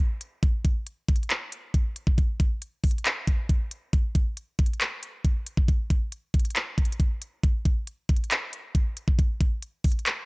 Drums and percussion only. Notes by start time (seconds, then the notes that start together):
0.21 closed hi-hat
0.43 kick, closed hi-hat
0.65 kick, closed hi-hat
0.87 closed hi-hat
1.08 kick, closed hi-hat
1.16 closed hi-hat
1.23 closed hi-hat
1.30 clap, closed hi-hat
1.52 closed hi-hat
1.74 kick, closed hi-hat
1.96 closed hi-hat
2.07 kick
2.18 kick, closed hi-hat
2.40 kick, closed hi-hat
2.62 closed hi-hat
2.84 kick, closed hi-hat, open hi-hat
2.91 closed hi-hat
2.98 closed hi-hat
3.05 clap, closed hi-hat
3.27 kick, closed hi-hat
3.49 kick, closed hi-hat
3.71 closed hi-hat
3.93 kick, closed hi-hat
4.15 kick, closed hi-hat
4.37 closed hi-hat
4.59 kick, closed hi-hat
4.66 closed hi-hat
4.73 closed hi-hat
4.81 clap, closed hi-hat
5.03 closed hi-hat
5.25 kick, closed hi-hat
5.46 closed hi-hat
5.57 kick
5.68 kick, closed hi-hat
5.90 kick, closed hi-hat
6.12 closed hi-hat
6.34 kick, closed hi-hat
6.39 closed hi-hat
6.45 closed hi-hat
6.50 closed hi-hat
6.56 clap, closed hi-hat
6.78 kick, closed hi-hat
6.85 closed hi-hat
6.92 closed hi-hat
7.00 kick, closed hi-hat
7.22 closed hi-hat
7.43 kick, closed hi-hat
7.65 kick, closed hi-hat
7.87 closed hi-hat
8.09 kick, closed hi-hat
8.16 closed hi-hat
8.24 closed hi-hat
8.31 clap, closed hi-hat
8.53 closed hi-hat
8.75 kick, closed hi-hat
8.97 closed hi-hat
9.08 kick
9.19 kick, closed hi-hat
9.41 kick, closed hi-hat
9.62 closed hi-hat
9.84 kick, closed hi-hat, open hi-hat
9.92 closed hi-hat
9.99 closed hi-hat
10.06 clap, closed hi-hat